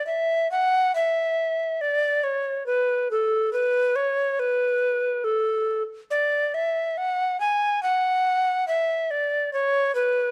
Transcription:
\new Staff \with { instrumentName = "Recorder" } { \time 4/4 \key e \mixolydian \tempo 4 = 70 e''8 fis''8 e''4 d''8 cis''8 b'8 a'8 | b'8 cis''8 b'4 a'8 r8 d''8 e''8 | fis''8 gis''8 fis''4 e''8 d''8 cis''8 b'8 | }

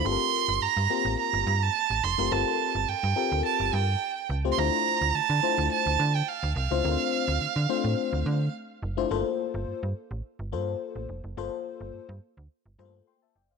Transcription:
<<
  \new Staff \with { instrumentName = "Violin" } { \time 4/4 \key g \dorian \tempo 4 = 106 c'''4 bes''4 bes''8. a''8. c'''8 | a''4 g''4 a''8 g''4 r16. c'''32 | bes''4 a''4 a''8. g''16 f''8 f''8~ | f''2. r4 |
r1 | r1 | }
  \new Staff \with { instrumentName = "FM electric piano" } { \time 4/4 \key g \dorian << { r1 | r1 | r1 | r1 |
r1 | r2. <g'' c'''>16 <e'' a''>16 <d'' g''>16 <c'' f''>16 | } \\ { <c' f' g' a' bes'>4 r8 <bes c' f' g' bes'>4~ <bes c' f' g' bes'>16 r4 <a c' f' g' bes'>16 | <c' f' g' a' bes'>4 r8 <c' f' g' a' bes'>4~ <c' f' g' a' bes'>16 r4 <a c' f' g' c''>16 | <a d' e' f' c''>4 r8 <a d' e' f' c''>4~ <a d' e' f' c''>16 r4 <a d' e' f' c''>16 | <a c' d' f' bes' c''>4 r8 <a c' d' f' c''>4~ <a c' d' f' c''>16 r4 <a d' e' f' c''>16 |
<bes f' a' c''>4~ <bes f' a' c''>16 r4 r16 <bes f' a' c''>4 r8 | <bes f' a' c''>4~ <bes f' a' c''>16 r4 r16 <a bes f' a' c''>4 r8 | } >> }
  \new Staff \with { instrumentName = "FM bass" } { \clef bass \time 4/4 \key g \dorian g,,16 r8 g,,16 g,16 g,16 r16 a,,16 r16 g,,16 g,8 r16 a,,16 f,,16 fis,,16 | g,,16 r8 g,,16 g,16 g,16 r16 d,16 r16 g,,16 g,8 r8 cis,8 | d,16 r8 d,16 d16 d16 r16 d,16 r16 d,16 d8 r16 d,16 c,16 cis,16 | d,16 r8 d,16 d16 d16 r16 a,16 r16 d,16 d8 r8 fis,,8 |
g,,16 r8 g,,16 g,16 g,16 r16 a,,16 r16 g,,16 g,8 r16 a,,16 f,,16 fis,,16 | g,,16 r8 g,,16 g,16 g,16 r16 d,16 r16 g,,16 g,8 r8 fis,,8 | }
>>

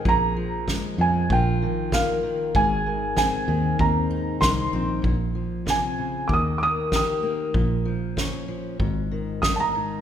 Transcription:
<<
  \new Staff \with { instrumentName = "Felt piano" } { \time 4/4 \key bes \dorian \tempo 4 = 96 bes''4 r8 aes''8 g''4 f''4 | aes''4 aes''4 bes''4 c'''8. r16 | r4 aes''4 <d''' ees'''>8 <d''' ees'''>8 ees'''4 | r2. ees'''16 <a'' bes''>8. | }
  \new Staff \with { instrumentName = "Steel-string acoustic guitar" } { \clef bass \time 4/4 \key bes \dorian << { aes'4 aes4 f'4 bes4 | aes'4 c'4 c'8 ees'4 c'8 | r2. g'4 | r4 des'4 r2 | } \\ { bes,8 f4 f8 bes,8 ees4 ees8 | aes,8 ees4 ees4. ees4 | bes,8 f8 c8 des8 ees8 bes4 bes8 | bes,8 f4 f8 aes,8 ees8 g,8 aes,8 | } >> }
  \new Staff \with { instrumentName = "Fingered electric bass" } { \clef bass \time 4/4 \key bes \dorian bes,,4. f,8 bes,,2 | aes,,4. ees,8 ees,4 c,8 bes,,8 | bes,,2 ees,2 | bes,,2 aes,,2 | }
  \new DrumStaff \with { instrumentName = "Drums" } \drummode { \time 4/4 bd4 <bd sn>4 bd4 <bd sn>4 | bd4 <bd sn>4 bd4 <bd sn>4 | bd4 <bd sn>4 bd4 <bd sn>4 | bd4 <bd sn>4 bd4 <bd sn>4 | }
>>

